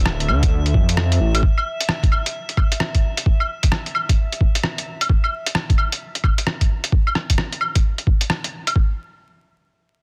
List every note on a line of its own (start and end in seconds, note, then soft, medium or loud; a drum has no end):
0.00 0.30 D1 medium
0.00 5.10 E5 medium
0.06 cross-stick loud
0.20 closed hi-hat soft
0.28 0.74 D2 medium
0.28 claves medium
0.43 kick loud
0.43 closed hi-hat medium
0.66 closed hi-hat soft
0.74 1.19 F2 medium
0.74 kick loud
0.89 closed hi-hat soft
0.97 cross-stick loud
1.12 closed hi-hat soft
1.20 1.42 A1 medium
1.35 closed hi-hat soft
1.35 claves soft
1.43 kick loud
1.58 claves soft
1.80 closed hi-hat medium
1.89 cross-stick loud
2.03 kick loud
2.03 closed hi-hat soft
2.12 claves medium
2.26 closed hi-hat soft
2.49 closed hi-hat soft
2.57 kick loud
2.57 claves soft
2.72 closed hi-hat medium
2.80 cross-stick loud
2.95 kick medium
2.95 closed hi-hat soft
3.17 closed hi-hat soft
3.26 kick loud
3.40 claves soft
3.63 kick medium
3.63 closed hi-hat soft
3.72 cross-stick medium
3.86 closed hi-hat soft
3.95 claves medium
4.09 kick medium
4.09 closed hi-hat soft
4.32 closed hi-hat soft
4.41 kick medium
4.55 closed hi-hat soft
4.64 cross-stick medium
4.78 closed hi-hat soft
5.01 closed hi-hat soft
5.01 claves soft
5.09 kick loud
5.24 claves soft
5.46 closed hi-hat soft
5.55 cross-stick medium
5.70 kick medium
5.70 closed hi-hat soft
5.78 claves medium
5.92 closed hi-hat soft
6.15 closed hi-hat soft
6.24 kick medium
6.24 claves soft
6.38 closed hi-hat soft
6.47 cross-stick medium
6.61 kick medium
6.61 closed hi-hat soft
6.84 closed hi-hat soft
6.92 kick loud
7.07 claves soft
7.15 cross-stick medium
7.30 kick medium
7.30 closed hi-hat medium
7.38 cross-stick medium
7.52 closed hi-hat soft
7.61 claves medium
7.75 kick medium
7.75 closed hi-hat medium
7.98 closed hi-hat soft
8.07 kick medium
8.21 closed hi-hat medium
8.30 cross-stick medium
8.44 closed hi-hat soft
8.67 closed hi-hat soft
8.67 claves soft
8.76 kick loud